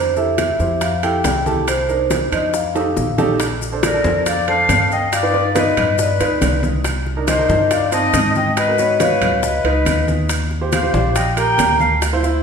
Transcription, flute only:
3.83 A#4
4.26 D5
4.49 F5
4.92 D#5
5.13 D5
5.57 B4
5.99 B4
7.27 C5
7.71 D5
7.92 D#5
8.36 D#5
8.57 B4
9.01 B4
9.44 B4
10.72 C5
11.15 D#5
11.37 G5
11.80 F5

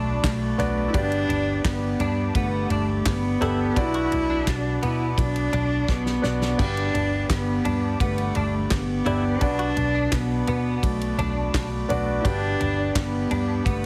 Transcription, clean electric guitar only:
Already playing: D4
1.29 D4
2.01 D4
2.36 B3
2.72 D4
3.42 E4
3.95 F#4
4.30 D4
4.83 B3
5.53 D4
6.94 D4
7.65 D4
8.01 B3
8.36 D4
9.06 E4
9.59 F#4
9.95 D4
10.48 B3
11.19 D4
12.60 D4
13.31 D4
13.65 B3

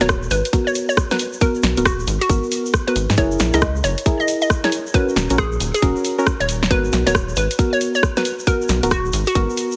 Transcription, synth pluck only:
0.01 C#5
0.31 B4
0.67 C#5
0.89 C#5
1.11 B4
1.41 A#4
1.86 F#4
2.21 F#4
2.87 B4
3.18 C#5
3.54 D#5
3.84 C#5
4.20 D#5
4.42 D#5
4.64 C#5
4.94 B4
5.38 G#4
5.74 G#4
6.40 C#5
6.71 B4
7.07 C#5
7.37 B4
7.73 C#5
7.95 C#5
8.17 B4
8.47 A#4
8.91 F#4
9.27 F#4

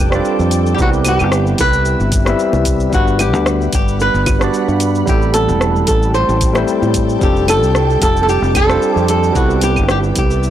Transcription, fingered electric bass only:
Already playing: F1
0.39 F2
0.79 C2
1.19 G1
1.59 C2
2.00 G1
2.53 C2
2.92 G1
3.33 D2
3.73 G1
4.14 G1
4.68 G2
5.07 A1
5.48 E1
5.88 A1
6.29 A1
6.82 A2
7.22 F1
7.62 C2
8.01 F1
8.42 F1
8.96 F2
9.35 C2
9.77 G1
10.16 C2

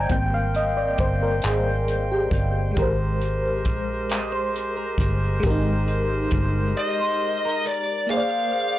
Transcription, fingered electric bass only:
0.11 G#1
0.99 G1
1.44 G#1
2.32 G1
2.78 G#1
3.66 A#1
4.99 G1
5.44 G#1
6.33 G1

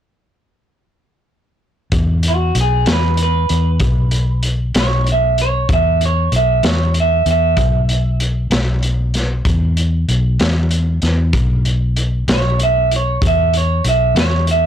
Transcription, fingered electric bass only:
1.92 E2
2.55 B1
2.86 E2
3.50 E2
3.81 B1
4.75 B1
5.69 E2
6.32 B1
6.63 E2
7.26 E2
7.58 B1
8.50 B1
9.46 E2
10.08 B1
10.40 E2
11.03 E2
11.34 B1
12.28 B1
13.22 E2
13.85 B1
14.15 E2

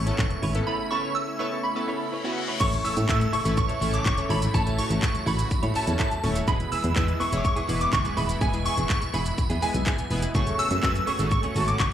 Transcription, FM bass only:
Already playing: A1
0.19 E1
0.43 G#1
2.61 A1
2.97 A2
3.09 A2
3.45 A1
3.81 A1
4.06 E1
4.30 G#1
4.54 A1
4.90 A1
5.27 A1
5.51 A2
5.63 A2
5.88 E2
6.24 D#1
6.48 E1
6.84 E2
6.96 E2
7.32 E1
7.69 E1
7.93 F#1
8.17 D#1
8.41 E1
8.78 E1
9.14 E1
9.38 E2
9.50 E2
9.74 B1
10.11 F1
10.35 F#1
10.71 F#2
10.83 F#2
11.19 G#1
11.56 G#1
11.80 F#1

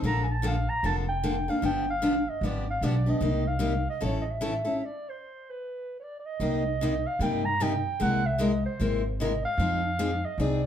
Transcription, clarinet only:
0.07 A#5
0.24 G#5
0.31 A5
0.47 F5
0.70 A#5
0.86 A5
1.09 G5
1.50 F5
1.65 G5
1.90 F5
2.29 D#5
2.45 D5
2.71 F5
2.84 D5
3.10 D#5
3.48 F5
3.90 D#5
4.05 C#5
4.21 D#5
4.31 E5
4.86 D5
5.09 C5
5.50 B4
6.00 C#5 D5
6.19 D5
6.25 D#5
7.07 F5
7.22 G5
7.45 A#5
7.62 G5
8.02 F#5
8.26 E5
8.42 D#5
8.66 C5
9.21 D#5
9.45 F5
10.25 D#5
10.40 D5

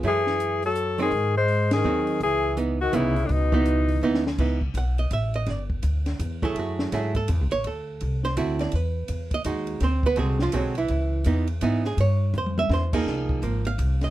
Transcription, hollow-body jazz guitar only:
0.04 F#3 A3 E4 G#4
0.99 F#3 C4 D#4
1.84 F#3 C4 D#4
2.57 E3 B3 D#4
2.92 E3 B3 D#4
3.52 E3 B3 D#4
4.03 E3 B3 D#4
4.39 E3 B3 D#4
4.78 F#5
4.99 D#5
5.13 E5
5.36 D#5
5.50 D5
6.43 F#3 A3 E4 G#4 A4
6.59 F#4
6.93 F#3 A3 E4 G#4
7.16 A4
7.52 C#5
7.67 A4
8.25 C5
8.37 D3 C4 E4 F#4
8.61 D5
8.75 B4
9.34 D#5
9.46 G#3 D#4 F#4
9.83 C4 C5
10.06 B3 B4
10.16 D3 G#3 C4 F#4 G#4
10.42 F3 F4
10.53 D3 F#3 G#3 C4 F#4
10.78 E3 E4
11.26 E3 B3 D#4
11.62 E3 B3 D#4
11.86 G#4
12.01 C#5
12.38 C5
12.59 E5
12.73 C5
12.93 F3 A#3 D#4 G#4
13.43 F3 A#3
13.67 F5
14.04 D#5

